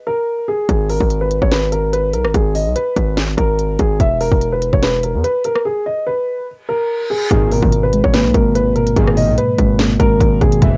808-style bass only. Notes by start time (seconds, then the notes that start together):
0.69 G#1
1.00 G#1
1.42 G#1
2.14 B1
2.25 G#1
2.34 G#1
2.66 B1
2.96 G#1
3.38 G#1
3.79 G#1
4.00 E1
4.32 E1
4.73 E1
5.14 E2
7.31 G#1
7.63 G#1
8.04 G#1
8.25 B1
8.34 G#1
8.96 G#1
9.28 B1
9.59 G#1
10.00 G#1
10.21 G#1
10.41 G#1
10.62 E1